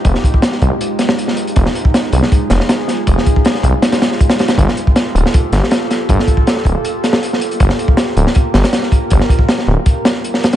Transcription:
Already playing: ambient pad G#3 D#4 F4 G4
0.05 detuned saw bass F1, kick, closed hi-hat
0.15 snare
0.24 kick, closed hi-hat
0.34 kick
0.42 snare, closed hi-hat
0.52 snare
0.62 detuned saw bass C2, kick, closed hi-hat
0.81 closed hi-hat
0.99 snare, closed hi-hat
1.09 snare
1.19 closed hi-hat
1.28 snare
1.37 closed hi-hat
1.47 closed hi-hat
1.56 detuned saw bass F1, ambient pad G#4, kick, closed hi-hat
1.66 snare
1.75 closed hi-hat
1.85 kick
1.94 snare, closed hi-hat
2.13 detuned saw bass C2, closed hi-hat
2.22 snare
2.32 kick, closed hi-hat
2.50 detuned saw bass F1, snare, closed hi-hat
2.60 snare
2.69 snare, closed hi-hat
2.88 snare, closed hi-hat
3.07 detuned saw bass F1, kick, closed hi-hat
3.18 snare
3.26 kick, closed hi-hat
3.36 kick
3.45 snare, closed hi-hat
3.54 snare
3.63 detuned saw bass C2, kick, closed hi-hat
3.82 snare, closed hi-hat
3.92 snare, closed hi-hat
4.02 snare, closed hi-hat
4.11 snare
4.21 kick, closed hi-hat
4.30 snare, closed hi-hat
4.39 snare, closed hi-hat
4.48 snare, closed hi-hat
4.58 detuned saw bass G1, ambient pad A#3 G4 A4, kick, closed hi-hat
4.68 snare
4.77 closed hi-hat
4.87 kick
4.96 snare, closed hi-hat
5.15 detuned saw bass D1, closed hi-hat
5.26 snare
5.34 kick, closed hi-hat
5.52 detuned saw bass G1, snare, closed hi-hat
5.63 snare
5.71 snare, closed hi-hat
5.91 snare, closed hi-hat
6.09 detuned saw bass G1, kick, closed hi-hat
6.19 snare
6.27 kick, closed hi-hat
6.37 kick
6.47 snare, closed hi-hat
6.56 snare
6.65 detuned saw bass D1, kick, closed hi-hat
6.85 closed hi-hat
7.04 snare, closed hi-hat
7.13 snare
7.23 closed hi-hat
7.33 snare
7.41 closed hi-hat
7.51 closed hi-hat
7.60 detuned saw bass G1, ambient pad A#4, kick, closed hi-hat
7.69 snare
7.79 closed hi-hat
7.88 kick
7.97 snare, closed hi-hat
8.17 detuned saw bass D1, closed hi-hat
8.27 snare
8.35 kick, closed hi-hat
8.54 detuned saw bass G1, snare, closed hi-hat
8.64 snare, closed hi-hat
8.73 snare, closed hi-hat
8.83 snare
8.92 kick, closed hi-hat
9.10 detuned saw bass G1, kick, closed hi-hat
9.20 snare
9.29 kick, closed hi-hat
9.39 kick
9.49 snare, closed hi-hat
9.58 snare
9.67 detuned saw bass D1
9.86 kick, closed hi-hat
10.05 snare, closed hi-hat
10.24 closed hi-hat
10.34 snare
10.43 snare, closed hi-hat
10.53 closed hi-hat

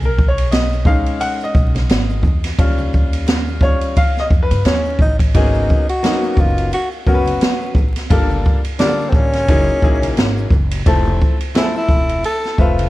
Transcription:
Already playing: upright bass B1
0.02 upright piano A#4, high conga, shaker
0.18 kick, high conga, shaker
0.28 upright piano C#5
0.38 ride, shaker
0.51 upright piano D#5, snare, hi-hat pedal, ride, shaker
0.73 shaker
0.85 upright piano G#3 C#4 D#4 F5, kick, low conga, shaker
1.06 ride, shaker
1.20 upright piano F#5, ride, shaker
1.40 upright piano D#5, shaker
1.55 upright bass B1, kick, shaker
1.75 snare, ride, high conga, shaker
1.89 upright bass G#1, snare, hi-hat pedal, ride, shaker
2.10 shaker
2.23 upright bass E2, kick, high conga, low conga, shaker
2.44 snare, ride, shaker
2.58 upright bass D#2, upright piano G3 C#4 F4, kick, ride, shaker
2.78 high conga, shaker
2.93 kick, high conga, shaker
3.13 ride, shaker
3.27 snare, hi-hat pedal, ride, low conga, shaker
3.47 shaker
3.61 upright piano G3 C#4 F4 C#5, kick, low conga, shaker
3.81 ride, shaker
3.96 upright piano F5, kick, ride, shaker
4.16 upright piano D#5, snare, shaker
4.30 upright bass F2, kick, shaker
4.43 upright piano B4
4.51 upright bass G2, ride, high conga, shaker
4.65 upright bass D#2, tenor saxophone C#4, upright piano C#5, snare, hi-hat pedal, ride, shaker
4.85 shaker
4.99 upright bass A1, tenor saxophone D#4, kick, high conga, low conga, shaker
5.19 kick, ride, shaker
5.34 upright bass G#1, upright piano F#3 A#3 B3 C#4 G#4, tenor saxophone D#4, kick, ride, shaker
5.54 high conga, shaker
5.69 kick, high conga, shaker
5.89 tenor saxophone F#4, ride, shaker
6.03 upright piano F#3 A#3 B3 C#4 D#4, snare, hi-hat pedal, ride, low conga, shaker
6.24 shaker
6.37 upright bass F#1, tenor saxophone F4, kick, low conga, shaker
6.58 ride, shaker
6.71 tenor saxophone F#4, ride, shaker
6.92 shaker
7.06 upright bass F#1, upright piano F#3 B3 C#4 A#4, tenor saxophone F#4, kick, shaker
7.14 upright piano B4
7.25 ride, high conga, shaker
7.41 snare, hi-hat pedal, ride, shaker
7.61 shaker
7.75 upright bass A#1, kick, low conga, shaker
7.96 snare, ride, shaker
8.10 upright bass G1, upright piano G3 A#3 D4 F4 A4, kick, ride, shaker
8.30 high conga, shaker
8.45 kick, high conga, shaker
8.64 ride, shaker
8.79 upright piano D3 G3 A#3 F4 G4, tenor saxophone D4, snare, hi-hat pedal, ride, low conga, shaker
8.87 upright piano A4
9.00 shaker
9.09 upright bass A1, tenor saxophone C4, kick
9.15 tenor saxophone C#4, low conga, shaker
9.33 snare, ride, shaker
9.48 upright bass F#1, upright piano F#3 A#3 D#4 E4 G#4, kick, ride, shaker
9.68 muted upright bass stroke, shaker
9.82 upright bass A#1, upright piano F#3 A#3 D#4 E4 G#4, kick, shaker
10.02 ride, high conga, shaker
10.17 upright bass G#1, snare, hi-hat pedal, ride, shaker
10.37 shaker
10.51 upright bass F#1, kick, low conga, shaker
10.71 ride, shaker
10.86 upright bass F1, upright piano F3 A3 C4 E4 A4, kick, ride, shaker
11.06 high conga, shaker
11.21 kick, high conga, shaker
11.40 ride, shaker
11.55 upright piano F3 A3 C4 E4 G#4, tenor saxophone E4, snare, hi-hat pedal, ride, low conga, shaker
11.63 upright piano A4
11.75 tenor saxophone E4, shaker
11.88 upright bass E1, kick, low conga, shaker
12.09 ride, shaker
12.23 tenor saxophone A4, ride, shaker
12.44 snare, shaker
12.58 upright bass F1, upright piano F3 A3 C4 B4 E5, tenor saxophone F4, kick, shaker
12.78 ride, high conga, shaker

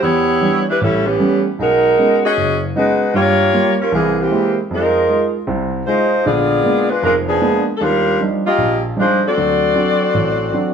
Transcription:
0.03 grand piano E2, saxophone section B3 E4 G4 C#5
0.41 grand piano E3 G3 D4
0.70 saxophone section G3 D4 E4 B4
0.80 grand piano A1, saxophone section G3 C#4 E4 G4 A4
1.06 saxophone section E3 B3 C#4 G4
1.20 grand piano G3 A3 B3 C#4
1.59 grand piano B1, saxophone section G#3 D#4 F#4 A#4
1.98 grand piano G#3 B3 C#4 D#4
2.25 saxophone section C#4 F#4 G#4 D#5
2.37 grand piano F#1
2.75 grand piano G#3 B3 C#4 D#4, saxophone section G#3 D#4 F#4 B4
3.14 grand piano G2, saxophone section A#3 F4 G4 C#5
3.53 grand piano G3 A#3 F4
3.81 saxophone section G3 C#4 F4 A#4
3.92 grand piano C2 E3, saxophone section E3 A#3 C4 G#4
4.20 saxophone section E3 A#3 C4 G4
4.31 grand piano G#3 A#3 C4 E4
4.71 grand piano F2, saxophone section G#3 D#4 F4 A#4
5.09 grand piano G#3 D#4 F4
5.47 grand piano C2 C3
5.86 grand piano G#3 D#4 F4, saxophone section G#3 D#4 F4 C5
6.26 grand piano A#1 D3, saxophone section B3 F4 G#4 D5
6.63 grand piano G#3 A#3 B3 D4
6.90 saxophone section G#3 D4 F4 B4
7.03 grand piano F1 F2, saxophone section G#3 D4 F4 A#4
7.28 saxophone section F3 B3 D4 G#4
7.41 grand piano G#3 A#3 B3 D4
7.77 grand piano D#2, saxophone section A4
7.82 saxophone section G3 D4 F4 A#4
8.20 grand piano F3 G3 D4 D#4
8.46 saxophone section A#3 F4 G4 D#5
8.58 grand piano A#1
8.96 grand piano F3 G3 D4 D#4, saxophone section G#3 D4 C5
9.01 saxophone section F4
9.27 saxophone section C4 F#4 A4 D5
9.37 grand piano D2 F#3
9.74 grand piano F#3 C4 D4
10.14 grand piano A1
10.53 grand piano F#3 C4 D4

